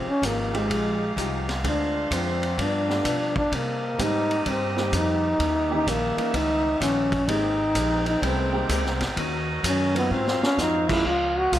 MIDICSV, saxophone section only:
0, 0, Header, 1, 2, 480
1, 0, Start_track
1, 0, Key_signature, -4, "major"
1, 0, Tempo, 470958
1, 1668, Time_signature, 4, 2, 24, 8
1, 11814, End_track
2, 0, Start_track
2, 0, Title_t, "Saxophone section"
2, 0, Program_c, 0, 65
2, 0, Note_on_c, 0, 63, 72
2, 0, Note_on_c, 0, 67, 72
2, 0, Note_on_c, 0, 68, 68
2, 0, Note_on_c, 0, 77, 80
2, 1649, Note_off_c, 0, 63, 0
2, 1651, Note_off_c, 0, 67, 0
2, 1667, Note_on_c, 0, 62, 79
2, 1667, Note_on_c, 0, 72, 68
2, 2601, Note_off_c, 0, 68, 0
2, 2602, Note_off_c, 0, 77, 0
2, 2612, Note_on_c, 0, 67, 72
2, 2613, Note_on_c, 0, 71, 61
2, 2618, Note_off_c, 0, 72, 0
2, 2620, Note_on_c, 0, 77, 82
2, 3563, Note_on_c, 0, 70, 67
2, 3569, Note_off_c, 0, 62, 0
2, 3569, Note_on_c, 0, 60, 71
2, 3569, Note_on_c, 0, 75, 86
2, 3571, Note_off_c, 0, 71, 0
2, 3574, Note_off_c, 0, 77, 0
2, 5319, Note_off_c, 0, 60, 0
2, 5319, Note_off_c, 0, 70, 0
2, 5319, Note_off_c, 0, 75, 0
2, 5492, Note_on_c, 0, 63, 80
2, 5496, Note_on_c, 0, 76, 87
2, 5501, Note_on_c, 0, 73, 68
2, 7377, Note_off_c, 0, 67, 0
2, 7399, Note_off_c, 0, 63, 0
2, 7401, Note_off_c, 0, 76, 0
2, 7404, Note_off_c, 0, 73, 0
2, 7417, Note_on_c, 0, 60, 75
2, 7419, Note_on_c, 0, 56, 76
2, 7422, Note_on_c, 0, 70, 77
2, 7422, Note_on_c, 0, 79, 89
2, 9321, Note_off_c, 0, 60, 0
2, 9323, Note_off_c, 0, 56, 0
2, 9324, Note_off_c, 0, 79, 0
2, 9330, Note_on_c, 0, 75, 91
2, 9331, Note_on_c, 0, 61, 77
2, 9333, Note_on_c, 0, 66, 74
2, 10276, Note_off_c, 0, 66, 0
2, 10288, Note_off_c, 0, 61, 0
2, 10288, Note_off_c, 0, 75, 0
2, 10289, Note_on_c, 0, 66, 73
2, 10296, Note_on_c, 0, 60, 81
2, 10297, Note_on_c, 0, 77, 86
2, 11225, Note_off_c, 0, 70, 0
2, 11247, Note_off_c, 0, 66, 0
2, 11248, Note_on_c, 0, 65, 67
2, 11248, Note_on_c, 0, 70, 67
2, 11251, Note_off_c, 0, 60, 0
2, 11251, Note_off_c, 0, 77, 0
2, 11252, Note_on_c, 0, 61, 73
2, 11257, Note_on_c, 0, 75, 87
2, 11814, Note_off_c, 0, 61, 0
2, 11814, Note_off_c, 0, 65, 0
2, 11814, Note_off_c, 0, 70, 0
2, 11814, Note_off_c, 0, 75, 0
2, 11814, End_track
0, 0, End_of_file